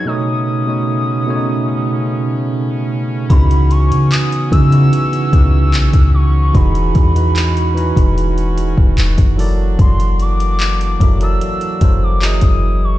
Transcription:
0.05 B2 C#3 A3 B3 C#4 D#4 C#5 D#6
0.66 B2 A3 D#4 C#5
1.27 B2 A3 C#4 C#5
1.36 D#4
3.29 C#2 C#3 E3 B3 D#4 E4 F#4 B5, kick, closed hi-hat
3.51 closed hi-hat
3.71 C#6, closed hi-hat
3.91 C#3, closed hi-hat
4.11 D#6, clap, closed hi-hat
4.32 closed hi-hat
4.51 C#3 B3 D#4 E4 F#4 E6, kick, closed hi-hat
4.71 C#3 B3 D#4 E4 F#4, closed hi-hat
4.93 closed hi-hat
5.13 closed hi-hat
5.32 C#2 C#3 B3 D#4 E4 F#4, kick, closed hi-hat
5.74 B1, clap, closed hi-hat
5.93 C#2, kick, closed hi-hat
6.14 C#6
6.53 E1 E3 G#3 D#4 F#4 G#4 B5, kick, closed hi-hat
6.75 closed hi-hat
6.95 E2, kick, closed hi-hat
7.14 E3 D#4 F#4 B4, closed hi-hat
7.36 clap, closed hi-hat
7.57 closed hi-hat
7.74 E3 D#4 F#4 B4, closed hi-hat
7.97 E1, kick, closed hi-hat
8.18 closed hi-hat
8.38 closed hi-hat
8.58 closed hi-hat
8.78 D#1, kick
8.98 E1, clap, closed hi-hat
9.18 F#1, kick, closed hi-hat
9.37 E3 F#3 A#3 D4 E4 A4 A#4 D5, open hi-hat
9.79 F#1 C6, kick, closed hi-hat
10.00 closed hi-hat
10.20 D6, closed hi-hat
10.40 closed hi-hat
10.60 clap, closed hi-hat
10.81 closed hi-hat
10.99 F#1 F#3 E4 A4 A#4 E5, kick, closed hi-hat
11.20 F#3 E4 A4 A#4 D5 E6, closed hi-hat
11.41 closed hi-hat
11.61 closed hi-hat
11.80 F#1 F#3 E4 A4 A#4 C5, kick, closed hi-hat
12.03 D6
12.21 E3 F#3 G#3 E4 G#4 A#4 D#5 D#6, clap, closed hi-hat
12.41 F#1, kick, closed hi-hat
12.84 C#6

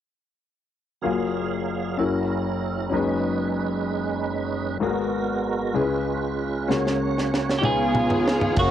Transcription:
1.02 F#1 F#2 F#3 A#3 F4 F#4 G#4 F5
1.97 F#1 F#2 F#3 C#4 E4 F#4 A4 A#4
2.06 A#4
2.90 F#1 F#2 G#3 C#4 D#4 G#4 B4
2.94 D#4
4.80 G#1 G#2 G#3 A#3 B3 F#4 G#4 A#4
4.86 B3
5.74 C#2 C#3 G#3 C#4 E4 F4 G#4 B4
5.81 F4
6.68 C#2 C#3 A#3 C#4 F#4 A#4 C#5, snare
6.87 snare
7.18 snare
7.34 snare
7.49 snare
7.58 C#2 D#4 F4 G4
7.63 C#3 B3 D#4 F4 G#4 B4 C#5, mid tom
7.95 mid tom
8.10 floor tom
8.27 snare
8.41 floor tom
8.56 F#1 F#3 A#3 C#4 F#4 G#4 A#4 F5, kick, crash
8.61 A#3

